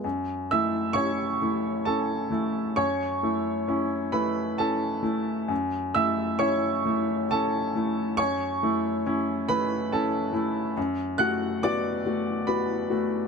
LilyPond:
\new Staff \with { instrumentName = "Upright piano" } { \time 3/4 \key fis \minor \tempo 4 = 67 << { r8 <e'' e'''>8 <cis'' cis'''>4 <a' a''>4 | <cis'' cis'''>4. <b' b''>8 <a' a''>4 | r8 <e'' e'''>8 <cis'' cis'''>4 <a' a''>4 | <cis'' cis'''>4. <b' b''>8 <a' a''>4 |
r8 <fis'' fis'''>8 <d'' d'''>4 <b' b''>4 | } \\ { fis,8 <a e'>8 <cis' e'>8 <a e'>8 <cis' e'>8 <a e'>8 | fis,8 <a e'>8 <cis' e'>8 <a e'>8 <cis' e'>8 <a e'>8 | fis,8 <a e'>8 <cis' e'>8 <a e'>8 <cis' e'>8 <a e'>8 | fis,8 <a e'>8 <cis' e'>8 <a e'>8 <cis' e'>8 <a e'>8 |
fis,8 <a fis'>8 <b fis'>8 <a fis'>8 <b fis'>8 <a fis'>8 | } >> }